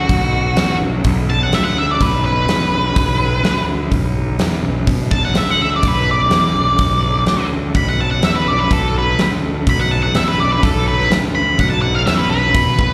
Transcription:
Already playing: F#4
0.09 B1, kick, open hi-hat
0.55 E2, snare, open hi-hat
0.80 B1
1.04 B1, kick, open hi-hat
1.30 A5
1.43 F#5
1.51 D2 E5, snare, open hi-hat
1.65 F#5
1.78 E5
1.91 D5
2.00 B1 B4, kick, open hi-hat
2.25 B4
2.46 E2, snare, open hi-hat
2.70 B1
2.96 B1, kick, open hi-hat
3.43 D2, snare, open hi-hat
3.91 B1, kick, open hi-hat
4.39 E2, snare, open hi-hat
4.62 B1
4.87 B2, kick, open hi-hat
5.10 B1 A5, kick
5.25 F#5
5.34 D2 E5, snare, open hi-hat
5.50 F#5
5.62 E5
5.76 D5
5.83 B1, kick, open hi-hat
5.88 B4
6.11 D5
6.29 E2, snare, open hi-hat
6.54 B1
6.79 B1, kick, open hi-hat
7.26 D2, snare, open hi-hat
7.75 B1 B5, kick, open hi-hat
7.89 F#5
8.01 A5
8.11 F#5
8.21 E2 E5, snare, open hi-hat
8.35 B4
8.46 B1 D5
8.59 B4
8.71 B1 A4, kick, open hi-hat
8.98 B4
9.18 D2, snare, open hi-hat
9.67 B1 B5, kick, open hi-hat
9.80 F#5
9.91 A5
10.03 F#5
10.14 E2 E5, snare, open hi-hat
10.28 B4
10.38 B1 D5
10.52 B4
10.63 B1 A4, kick, open hi-hat
10.88 B4
11.00 snare
11.11 D2, snare, open hi-hat
11.35 B5
11.58 B1 F#5, kick, open hi-hat
11.70 A5
11.82 F#5
11.95 F5
12.06 E2 E5, snare, open hi-hat
12.17 B4
12.29 B1 B4
12.55 B2, kick, open hi-hat
12.79 B1, kick

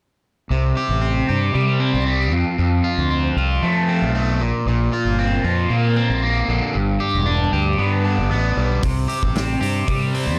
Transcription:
0.50 C2 C3
0.77 G4
0.89 A1
1.01 C4
1.29 G2 G4
1.54 C3 G3
1.80 C4
1.94 C2
2.06 G3
2.32 F2
2.58 F2
2.84 F4
2.97 D2
3.11 C4
3.36 C2 F4
3.62 F3 A3
3.88 C4
4.02 B1
4.15 A3
4.40 A#1 A#2
4.66 A#1 A#2
4.93 F4
5.05 G1
5.19 C4
5.44 F2 F4
5.70 A#2 A#3
5.96 C4
6.10 A#1
6.22 A#3
6.48 A#1 D3
6.73 G1 G2
7.00 G4
7.14 E1
7.26 D4
7.53 D2 G4
7.78 G2 B3
8.04 D4
8.18 G1
8.30 A1 B3
8.57 B1 G3
8.83 C2 C3, kick, open hi-hat
9.08 G4, open hi-hat
9.23 A1, kick
9.35 C4, snare, open hi-hat
9.61 G2 G4, open hi-hat
9.88 C3 G3, kick, open hi-hat
10.15 C4, open hi-hat
10.27 E2

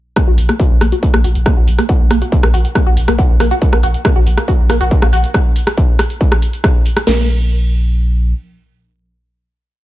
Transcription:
0.16 A#3, kick, cross-stick, closed hi-hat
0.27 A#1 F#4
0.38 A#1, open hi-hat
0.49 A#3, cross-stick, closed hi-hat
0.60 F#4, kick, closed hi-hat
0.71 A#1
0.81 A#1 A#3, cross-stick, open hi-hat
0.92 F#4, closed hi-hat
1.03 kick, closed hi-hat
1.14 A#1 A#3, cross-stick
1.24 A#1 F#4, open hi-hat
1.35 A#1, closed hi-hat
1.46 A#3, kick, cross-stick, closed hi-hat
1.57 A#1 F#4
1.67 A#1, open hi-hat
1.79 A#3, cross-stick, closed hi-hat
1.89 F#4, kick, closed hi-hat
2.00 A#1
2.11 A#1 A#3, cross-stick, open hi-hat
2.22 F#4, closed hi-hat
2.32 kick, closed hi-hat
2.43 A#1 A#3, cross-stick
2.54 A#1 F#4, open hi-hat
2.65 closed hi-hat
2.75 A#3, kick, cross-stick, closed hi-hat
2.86 A#1 F#4
2.97 A#1, open hi-hat
3.08 A#1 A#3, cross-stick, closed hi-hat
3.19 F#4, kick, closed hi-hat
3.30 A#1
3.40 A#1 A#3, cross-stick, open hi-hat
3.51 F#4, closed hi-hat
3.62 kick, closed hi-hat
3.73 A#1 A#3, cross-stick
3.83 A#1 F#4, open hi-hat
3.94 closed hi-hat
4.05 A#3, kick, cross-stick, closed hi-hat
4.16 A#1 F#4
4.26 A#1, open hi-hat
4.38 A#3, cross-stick, closed hi-hat
4.48 F#4, kick, closed hi-hat
4.59 A#1
4.70 A#1 A#3, cross-stick, open hi-hat
4.81 A#1 F#4, closed hi-hat
4.91 kick, closed hi-hat
5.02 A#1 A#3, cross-stick
5.13 A#1 F#4, open hi-hat
5.24 closed hi-hat
5.34 kick, cross-stick, closed hi-hat
5.56 open hi-hat
5.67 cross-stick, closed hi-hat
5.77 kick, closed hi-hat
5.99 cross-stick, open hi-hat
6.10 closed hi-hat
6.21 kick, closed hi-hat
6.32 cross-stick
6.42 open hi-hat
6.53 closed hi-hat
6.64 kick, cross-stick, closed hi-hat
6.85 open hi-hat
6.97 cross-stick, closed hi-hat
7.07 A#1 A#3, snare, crash

